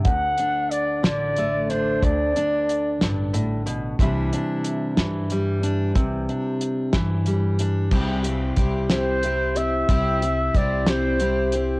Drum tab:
CC |------|------|------|------|
HH |xxxxxx|xxxxxx|xxxxxx|xxxxxx|
SD |---o--|---o--|---o--|---o--|
BD |o-----|o-----|o-----|o--o--|

CC |x-----|------|
HH |-xxxxx|xxxxxx|
SD |---o--|---o--|
BD |o-o---|o-o---|